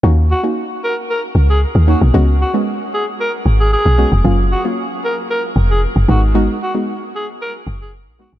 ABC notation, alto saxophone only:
X:1
M:4/4
L:1/16
Q:1/4=114
K:Ebm
V:1 name="Alto saxophone"
z2 G z3 B z B z2 A z2 G z | z2 G z3 A z B z2 A A3 z | z2 G z3 B z B z2 A z2 G z | z2 G z3 A z B z2 A z2 G z |]